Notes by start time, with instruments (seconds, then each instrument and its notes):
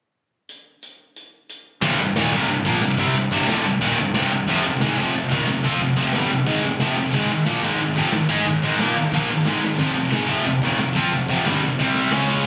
0.49 closed hi-hat
0.83 closed hi-hat
1.16 closed hi-hat
1.49 closed hi-hat
1.82 fingered electric bass C1, distorted electric guitar C2 G2 C3, kick, china
1.98 fingered electric bass C1, distorted electric guitar C2 G2
2.15 fingered electric bass D#1, distorted electric guitar D#2 A#2 D#3, snare, china
2.32 fingered electric bass C1, distorted electric guitar C2 G2 C3, kick
2.49 fingered electric bass C1, distorted electric guitar C2 G2, china
2.65 fingered electric bass A#1, distorted electric guitar A#2 F3 A#3, kick
2.82 fingered electric bass C1, distorted electric guitar C2 G2, snare, china
2.98 fingered electric bass C2, distorted electric guitar C3 G3 C4, kick
3.14 fingered electric bass C1, distorted electric guitar C2 G2, kick, china
3.31 fingered electric bass C1, distorted electric guitar C2 G2 C3, kick
3.48 fingered electric bass D1, distorted electric guitar D2 A2 D3, snare, china
3.65 fingered electric bass C1, distorted electric guitar C2 G2
3.81 fingered electric bass D#1, distorted electric guitar D#2 A#2 D#3, kick, china
3.99 fingered electric bass C1, distorted electric guitar C2 G2
4.14 fingered electric bass C1, distorted electric guitar C2 G2 C3, snare, china
4.31 fingered electric bass C1, distorted electric guitar C2 G2
4.47 fingered electric bass F1, distorted electric guitar F2 C3 F3, kick, china
4.65 fingered electric bass F1, distorted electric guitar F2 C3
4.80 fingered electric bass G#1, distorted electric guitar G#2 D#3 G#3, snare, china
4.97 fingered electric bass F1, distorted electric guitar F2 C3 F3, kick
5.14 fingered electric bass F1, distorted electric guitar F2 C3, china
5.31 fingered electric bass D#1, distorted electric guitar D#2 A#2 D#3, kick
5.47 fingered electric bass F1, distorted electric guitar F2 C3, snare, china
5.64 fingered electric bass F2, distorted electric guitar F3 C4 F4, kick
5.80 fingered electric bass F1, distorted electric guitar F2 C3, kick, china
5.97 fingered electric bass F1, distorted electric guitar F2 C3 F3, kick
6.13 fingered electric bass G1, distorted electric guitar G2 D3 G3, snare, china
6.31 fingered electric bass F1, distorted electric guitar F2 C3
6.46 fingered electric bass G#1, distorted electric guitar G#2 D#3 G#3, kick, china
6.63 fingered electric bass F1, distorted electric guitar F2 C3
6.80 fingered electric bass F1, distorted electric guitar F2 C3 F3, snare, china
6.96 fingered electric bass F1, distorted electric guitar F2 C3
7.13 fingered electric bass G#1, distorted electric guitar G#2 D#3 G#3, kick, crash, china
7.28 fingered electric bass G#1, distorted electric guitar G#2 D#3
7.45 fingered electric bass A#1, distorted electric guitar A#2 F3 A#3, snare, china
7.63 fingered electric bass G#1, distorted electric guitar G#2 D#3 G#3, kick
7.78 fingered electric bass G#1, distorted electric guitar G#2 D#3, china
7.96 fingered electric bass F1, distorted electric guitar F2 C3 F3, kick
8.12 fingered electric bass G#1, distorted electric guitar G#2 D#3, snare, china
8.29 fingered electric bass G#2, distorted electric guitar G#3 D#4 G#4, kick
8.46 fingered electric bass G#1, distorted electric guitar G#2 D#3, kick, china
8.62 fingered electric bass G#1, distorted electric guitar G#2 D#3 G#3, kick
8.78 fingered electric bass A#1, distorted electric guitar A#2 F3 A#3, snare, china
8.95 fingered electric bass G#1, distorted electric guitar G#2 D#3
9.12 fingered electric bass A#1, distorted electric guitar A#2 F3 A#3, kick, china
9.27 fingered electric bass G#1, distorted electric guitar G#2 D#3
9.44 fingered electric bass G#1, distorted electric guitar G#2 D#3 G#3, snare, china
9.60 fingered electric bass G#1, distorted electric guitar G#2 D#3
9.78 fingered electric bass F1, distorted electric guitar F2 C3 F3, kick, china
9.94 fingered electric bass F1, distorted electric guitar F2 C3
10.10 fingered electric bass G#1, distorted electric guitar G#2 D#3, snare, china
10.14 distorted electric guitar G#3
10.28 fingered electric bass F1, distorted electric guitar F2 C3 F3, kick
10.45 fingered electric bass F1, distorted electric guitar F2 C3, china
10.62 fingered electric bass D#1, distorted electric guitar D#2 A#2 D#3, kick
10.77 fingered electric bass F1, distorted electric guitar F2 C3, snare, china
10.95 fingered electric bass F2, distorted electric guitar F3 C4 F4, kick
11.12 fingered electric bass F1, distorted electric guitar F2 C3, kick, china
11.28 fingered electric bass F1, distorted electric guitar F2 C3 F3, kick
11.44 fingered electric bass G1, distorted electric guitar G2 D3 G3, snare, china
11.60 fingered electric bass F1, distorted electric guitar F2 C3
11.78 fingered electric bass C2, distorted electric guitar C3 G3 C4, high tom
11.94 snare
12.11 fingered electric bass C#2, distorted electric guitar C#3 G#3 C#4, snare
12.28 floor tom